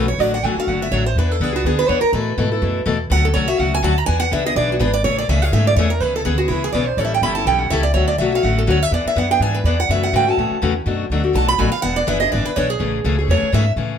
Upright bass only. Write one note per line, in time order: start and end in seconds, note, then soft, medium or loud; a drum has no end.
0.00 0.18 B1 medium
0.18 0.42 A1 medium
0.44 0.55 G#1 medium
0.56 muted upright bass stroke soft
0.67 0.91 F#1 medium
0.91 1.15 A1 medium
1.16 1.40 E2 medium
1.40 1.64 C#2 medium
1.64 1.88 D2 medium
1.89 2.02 E2 medium
2.03 muted upright bass stroke soft
2.13 2.37 A2 medium
2.37 2.61 G#2 medium
2.62 2.85 F#2 medium
2.86 3.10 E2 medium
3.10 3.34 D2 medium
3.35 3.58 C2 medium
3.59 3.82 C#2 medium
3.83 4.07 D2 medium
4.08 4.31 E2 medium
4.32 4.55 C#2 medium
4.56 4.79 B1 medium
4.80 5.04 G#1 medium
5.04 5.28 A1 medium
5.28 5.52 C#2 medium
5.52 5.75 G#2 medium
5.76 6.00 E2 medium
6.00 6.25 C#2 medium
6.25 6.48 D2 medium
6.49 6.73 C#2 medium
6.74 6.97 B1 medium
6.97 7.21 A1 medium
7.21 7.45 G1 medium
7.45 7.70 B1 medium
7.71 7.94 C#2 medium
7.95 8.18 D2 medium
8.19 8.43 B1 medium
8.43 8.66 A1 medium
8.67 8.91 D2 medium
8.91 9.05 E2 medium
9.05 muted upright bass stroke soft
9.16 9.39 F#2 medium
9.40 9.63 G#2 medium
9.64 9.88 E2 medium
9.89 10.12 F#2 medium
10.13 10.37 G#2 medium
10.37 10.50 A2 medium
10.51 muted upright bass stroke soft
10.62 10.85 E2 medium
10.86 11.09 F#2 medium
11.10 11.34 D2 medium
11.35 11.58 B1 medium
11.59 11.72 A1 medium
11.73 muted upright bass stroke soft
11.83 12.07 E1 medium
12.08 12.31 F#1 medium
12.33 12.45 G#1 medium
12.57 12.79 B1 loud
12.80 13.04 A1 medium
13.05 13.28 C#2 medium
13.28 13.41 E2 medium
13.42 muted upright bass stroke soft
13.53 13.76 G#2 medium
13.76 13.98 A2 medium